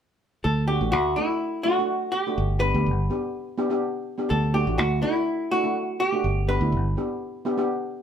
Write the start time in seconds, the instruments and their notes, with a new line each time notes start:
0.44 fingered electric bass D2, hollow-body jazz guitar A4
0.68 steel pan A3 D4 F#4, hollow-body jazz guitar G4
0.81 fingered electric bass A1, steel pan A3 D4 F#4
0.92 fingered electric bass D2, hollow-body jazz guitar F#4
1.16 steel pan A3 D4 F#4, hollow-body jazz guitar E4
1.63 steel pan A3 D4 F#4, hollow-body jazz guitar F#4
1.78 steel pan A3 D4 F#4
2.12 hollow-body jazz guitar G4
2.27 steel pan A3 D4 F#4
2.38 fingered electric bass G1
2.60 steel pan B3 D4 G4, hollow-body jazz guitar B4
2.74 fingered electric bass D2, steel pan B3 D4 G4
2.86 fingered electric bass G1
3.10 steel pan B3 D4 G4
3.58 steel pan B3 D4 G4
3.70 steel pan B3 D4 G4
4.18 steel pan B3 D4 G4
4.30 fingered electric bass D2, hollow-body jazz guitar A4
4.54 steel pan A3 D4 F#4, hollow-body jazz guitar G4
4.67 fingered electric bass A1, steel pan A3 D4 F#4
4.78 fingered electric bass D2, hollow-body jazz guitar F#4
5.02 steel pan A3 D4 F#4, hollow-body jazz guitar E4
5.51 steel pan A3 D4 E4, hollow-body jazz guitar F#4
5.64 steel pan A3 D4 F#4
6.00 hollow-body jazz guitar G4
6.12 steel pan A3 D4 F#4
6.24 fingered electric bass G1
6.48 steel pan B3 D4 G4, hollow-body jazz guitar B4
6.61 fingered electric bass D2, steel pan B3 D4 E4
6.72 fingered electric bass G1
6.97 steel pan B3 D4 G4
7.45 steel pan B3 D4 G4
7.58 steel pan B3 D4 G4